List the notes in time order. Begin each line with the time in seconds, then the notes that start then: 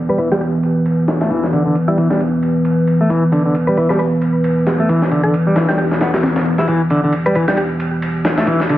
Already playing: E3 B3 B4
0.09 G3 B4
0.18 E3 B4, ride
0.32 G3 G4, snare
0.41 G4, ride
0.63 ride
0.86 ride
1.08 snare, ride
1.21 A3, snare, ride
1.30 E3, ride
1.43 snare
1.53 D3, ride
1.66 D3
1.75 ride
1.88 G3 E4
1.98 E3, ride
2.10 G3, snare
2.20 ride
2.43 ride
2.65 ride
2.87 ride
3.01 A3
3.10 E3, ride
3.32 D3, ride
3.45 D3
3.55 ride
3.67 G3 B4
3.77 E3 B4, ride
3.89 G3 B4, snare
3.99 B4, ride
4.22 ride
4.44 ride
4.67 snare, open hi-hat
4.80 A3
4.89 E3, ride
5.02 snare
5.11 D3, ride
5.23 D3 A4
5.34 ride
5.47 G3
5.56 E3, snare, ride
5.68 G3 G4, snare, ride
5.78 G4, ride
5.91 snare
6.01 B3, snare, ride
6.14 snare, ride
6.23 snare, ride
6.36 snare, ride
6.46 ride
6.58 E4, snare
6.68 E3 G4, ride
6.90 D3, ride
7.04 D3
7.13 ride
7.26 G3 B4
7.35 E3 B4, ride
7.48 G3 G4, snare
7.57 G4, ride
7.80 ride
8.02 ride
8.25 snare, ride
8.38 A3, snare, ride
8.47 E3, ride
8.60 snare
8.69 D3, ride